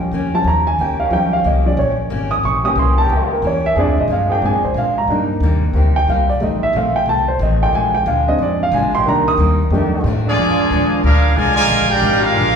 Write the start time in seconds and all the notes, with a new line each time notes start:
Already playing: D#3 F3 G3 A#3 C#4
0.11 F2 D#3 A#3 C#4 G4
0.34 F3 G3 C#4 A5
0.44 D#2 D#3 A#3 C#4 A#5
0.48 G4
0.67 G#5
0.78 C#2 D#3 A#3 C#4 G4 G5
0.99 D#3 A#3 C#4 G4 F5
1.10 D#2 D#3 F3 G3 A#3 C#4 G4 G5
1.33 F5
1.44 C2 D#3 A#3 C#4 G4 D#5
1.65 F3 G3 C#4 D5
1.77 A#1 D#3 A#3 C#4 C#5
1.81 G4
2.10 G#1 D#3 A#3 C#4 G4
2.31 D#6
2.43 A#1 E3 A#3 C#4 G4 C#6
2.63 E3 G3 A#3 C#4 G4 D#6
2.76 C2 E3 A#3 C#4 G4 C6
2.97 E3 A#3 C#4 G4 A5
3.10 C#2 E3 A#3 C#4 G4 G5
3.33 A#4
3.42 E2 E3 A#3 C#4 G4
3.47 C#5
3.66 E5
3.75 F2 A#2 F3 G#3 A#3 C4 D4 G#4
3.80 D5
3.87 D2
3.98 A#1 D#5
4.08 G2 A#2 F3 G#3 D4
4.13 F5
4.29 F3 A#3 D4 G#4 G5
4.42 G#2 A#2 F3 G#3 C4 D4
4.46 G#5
4.53 F2
4.64 D2 C5
4.74 A#2 F3 G#3 D4
4.78 F5
4.98 A#5
5.08 G2 C3 G3 A#3 D4 D#4
5.12 D#4
5.40 D#2 C3 G3 A#3
5.44 D#4
5.73 D2 C3 G3 A#3 C4 D#4 G4
5.96 G5
6.07 C2 C3 G3 A#3 D#4 F5
6.29 D5
6.39 A1 F2 D#3 G3 A3 C4 D#4 D#5
6.63 E5
6.73 A#1 F2 D#3 A3 C4 F5
6.96 G5
7.06 C2 F2 D#3 A3 C4 A5
7.28 C5
7.39 A1 F2 D#3 A3 C4 D#5
7.60 D3 G#3 A#3 F4 G5
7.72 A#1 A#2 F3 G#3 D4 G#5
7.95 G5
8.05 D2 A#2 F3 G#3 D4 F5
8.27 G#3 C4 D4 D#5
8.39 F2 A#2 F3 G#3 D4
8.43 D5
8.63 F5
8.72 D2 A#2 F3 G#3 D4 G#5
8.82 A#1
8.93 G#1 D#3 A#3 C4 G4 C6
9.04 C2 C3 D#3 G3 A#3 D4 D#4
9.09 A#5
9.28 D#6
9.37 D#2 C3 G3 A#3 D#4
9.70 F2 D#3 G3 A3 D4 G4
9.75 D4
10.04 F2 A2 D#3 A3 D4
10.25 F3 G#3 A#3 D4 F4 G#4 D5
10.37 F2 A#2 F3 G#3 D4
10.59 muted upright bass stroke
10.71 D#2 A#2 F3 G#3 D4
11.03 D2 A#2 F3 G#3 D4 F4 G#4 A#4 F5
11.36 C2 A#2 D3 F3 G#3 D4 F4 A#4 D5 G#5
11.56 D3 F3 G#3 F4 A#4 D5 G#5
11.69 A#1 A#2 F3 G#3 D4
11.89 G#3 D4 F4 G4 A#4 D5 G5
12.02 G#1 A#2 F3 G#3 D4
12.22 G#3 D4 F4 G#4 A#4 F5
12.35 A#1 A#2 F3 G#3 D4